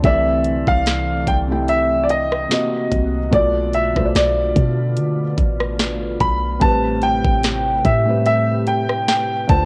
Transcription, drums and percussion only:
0.04 kick, closed hi-hat
0.45 closed hi-hat
0.67 kick
0.86 snare, closed hi-hat
1.27 kick, closed hi-hat
1.68 closed hi-hat
2.09 closed hi-hat
2.32 cross-stick
2.51 snare, closed hi-hat
2.92 kick, closed hi-hat
3.33 kick, closed hi-hat
3.73 closed hi-hat
3.96 kick, cross-stick
4.15 snare, closed hi-hat
4.56 kick, closed hi-hat
4.97 closed hi-hat
5.38 kick, closed hi-hat
5.60 cross-stick
5.79 snare, closed hi-hat
6.20 kick, closed hi-hat
6.61 kick, closed hi-hat
7.02 closed hi-hat
7.25 kick
7.43 snare, closed hi-hat
7.85 kick, closed hi-hat
8.26 closed hi-hat
8.67 closed hi-hat
8.89 cross-stick
9.08 snare, closed hi-hat
9.49 kick, closed hi-hat

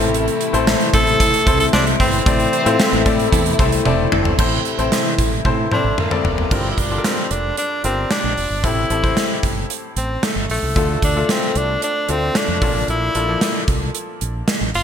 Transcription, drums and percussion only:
0.01 closed hi-hat
0.14 closed hi-hat
0.28 closed hi-hat
0.41 closed hi-hat
0.54 closed hi-hat
0.67 snare, tambourine
0.81 closed hi-hat
0.93 kick, closed hi-hat
1.07 closed hi-hat
1.20 kick, closed hi-hat
1.34 closed hi-hat
1.47 kick, closed hi-hat
1.60 closed hi-hat
1.73 snare, tambourine
1.87 closed hi-hat
2.00 kick, open hi-hat
2.13 closed hi-hat
2.26 kick, closed hi-hat
2.40 closed hi-hat
2.53 closed hi-hat
2.66 closed hi-hat
2.79 snare, tambourine
2.93 closed hi-hat
3.06 kick, closed hi-hat
3.19 closed hi-hat
3.33 kick, closed hi-hat
3.46 closed hi-hat
3.59 kick, closed hi-hat
3.72 closed hi-hat
3.86 high tom
4.12 mid tom
4.25 floor tom
4.39 kick, crash
4.65 closed hi-hat
4.79 closed hi-hat
4.92 snare, closed hi-hat
5.18 kick, closed hi-hat
5.45 kick, high tom
5.72 mid tom
5.98 mid tom
6.11 mid tom
6.25 floor tom
6.38 floor tom
6.51 kick, crash
6.78 kick, closed hi-hat
7.04 snare, closed hi-hat
7.31 closed hi-hat
7.57 closed hi-hat
7.84 closed hi-hat
8.11 snare, closed hi-hat
8.37 open hi-hat
8.64 kick, closed hi-hat
8.90 closed hi-hat
9.04 kick
9.17 snare, closed hi-hat
9.43 kick, closed hi-hat
9.70 closed hi-hat
9.97 closed hi-hat
10.23 snare, closed hi-hat
10.50 open hi-hat
10.76 kick, closed hi-hat
11.02 kick, closed hi-hat
11.29 snare, closed hi-hat
11.55 closed hi-hat
11.82 closed hi-hat
12.09 closed hi-hat
12.35 snare, closed hi-hat
12.62 kick, open hi-hat
12.88 closed hi-hat
13.15 closed hi-hat
13.41 snare, closed hi-hat
13.68 kick, closed hi-hat
13.95 closed hi-hat
14.21 closed hi-hat
14.48 snare, closed hi-hat
14.74 open hi-hat

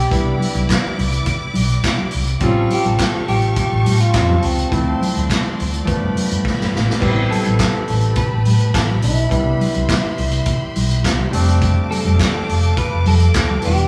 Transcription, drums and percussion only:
0.11 kick, closed hi-hat, low conga
0.39 open hi-hat, high conga
0.55 closed hi-hat, high conga
0.69 kick, snare, clap, closed hi-hat, high conga
0.98 open hi-hat, muted conga, high conga
1.12 closed hi-hat
1.26 kick, closed hi-hat, muted conga, low conga
1.54 open hi-hat, muted conga, high conga
1.69 closed hi-hat
1.83 kick, snare, clap, closed hi-hat, muted conga
1.98 high conga
2.11 open hi-hat, muted conga
2.27 closed hi-hat
2.40 kick, closed hi-hat, low conga
2.70 open hi-hat, muted conga, high conga
2.84 closed hi-hat, high conga
2.98 kick, snare, clap, closed hi-hat, muted conga, high conga
3.28 open hi-hat, high conga
3.42 closed hi-hat
3.56 kick, closed hi-hat, muted conga, low conga
3.86 open hi-hat, muted conga, high conga
4.00 closed hi-hat
4.13 kick, snare, clap, closed hi-hat
4.30 high conga
4.42 open hi-hat
4.59 closed hi-hat
4.72 kick, closed hi-hat, muted conga, low conga
5.01 open hi-hat, muted conga, high conga
5.15 closed hi-hat, high conga
5.30 kick, snare, clap, closed hi-hat, high conga
5.59 open hi-hat, muted conga, high conga
5.74 closed hi-hat
5.87 kick, closed hi-hat, low conga
6.16 open hi-hat, muted conga, high conga
6.31 closed hi-hat
6.45 kick, snare
6.60 snare, high conga
6.74 snare, muted conga, low conga
6.90 snare
7.02 kick, crash, muted conga, low conga
7.31 open hi-hat, muted conga, high conga
7.45 closed hi-hat, high conga
7.59 kick, snare, clap, closed hi-hat, muted conga, high conga
7.88 open hi-hat, muted conga
8.01 closed hi-hat
8.15 kick, closed hi-hat, muted conga, low conga
8.45 open hi-hat, high conga
8.60 closed hi-hat
8.74 kick, snare, clap, closed hi-hat, muted conga
8.90 high conga
9.02 open hi-hat, low conga
9.18 closed hi-hat
9.31 kick, closed hi-hat, low conga
9.61 open hi-hat, muted conga, high conga
9.74 closed hi-hat, high conga
9.89 kick, snare, clap, closed hi-hat, high conga
10.18 open hi-hat, muted conga
10.31 closed hi-hat
10.46 kick, closed hi-hat, muted conga, low conga
10.76 open hi-hat, muted conga, high conga
10.91 closed hi-hat
11.04 kick, snare, clap, closed hi-hat
11.19 high conga
11.33 open hi-hat, muted conga, low conga
11.49 closed hi-hat
11.62 kick, closed hi-hat, muted conga, low conga
11.91 open hi-hat, high conga
12.05 closed hi-hat, high conga
12.19 kick, snare, clap, closed hi-hat, high conga
12.49 open hi-hat
12.63 closed hi-hat
12.77 kick, closed hi-hat, muted conga, low conga
13.06 open hi-hat, high conga
13.20 closed hi-hat
13.34 kick, snare, clap, closed hi-hat, muted conga
13.50 high conga
13.62 open hi-hat, low conga
13.78 closed hi-hat

